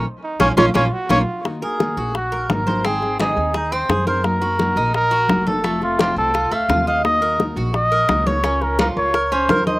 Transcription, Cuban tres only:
X:1
M:4/4
L:1/8
Q:1/4=172
K:Abmix
V:1 name="Cuban tres"
z2 [B,DF] [B,DF] [B,DF] z [B,DF] z | z B2 G2 B2 c | C2 E2 A C A B- | B G2 E2 G2 =A |
=A,2 C2 F A, F e- | e B2 G2 B2 d | D2 F2 B D B e |]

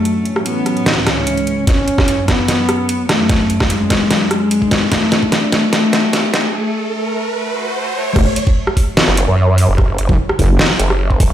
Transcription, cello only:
X:1
M:4/4
L:1/8
Q:1/4=148
K:F#m
V:1 name="Cello"
A,2 B,3 C3 | C3 B,4 A,- | A,2 G,3 G,3 | A,3 A, A,3 A, |
A,2 A,2 A, A, A, A, | z8 | z8 |]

